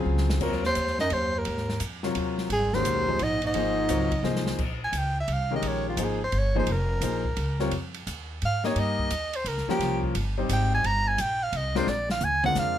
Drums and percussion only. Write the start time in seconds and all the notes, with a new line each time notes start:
0.18 snare
0.30 snare
0.41 kick, crash
0.52 snare
0.64 snare
0.75 hi-hat pedal, ride
0.87 snare
0.99 snare
1.10 ride
1.45 ride
1.57 snare
1.69 snare
1.80 hi-hat pedal, ride
2.03 snare
2.15 ride
2.38 snare
2.50 ride
2.73 snare
2.85 hi-hat pedal, ride
3.19 ride
3.42 ride
3.54 ride
3.89 hi-hat pedal, ride
4.12 kick, ride
4.24 snare
4.36 snare
4.47 snare
4.58 kick, crash
4.93 hi-hat pedal, ride
5.28 ride
5.62 ride
5.97 hi-hat pedal, ride
6.32 ride
6.67 ride
7.01 hi-hat pedal, ride
7.25 kick
7.37 ride
7.59 snare
7.71 ride
7.94 ride
8.07 hi-hat pedal, ride
8.42 ride
8.64 snare
8.76 ride
8.99 kick
9.10 hi-hat pedal, ride
9.33 ride
9.46 ride
9.58 snare
9.69 snare
9.80 snare, ride
10.03 kick
10.15 ride
10.49 hi-hat pedal, ride
10.84 ride
11.18 hi-hat pedal, ride
11.53 ride
11.75 snare
11.87 snare
12.10 snare
12.21 hi-hat pedal, mid tom
12.44 mid tom
12.55 snare, hi-hat pedal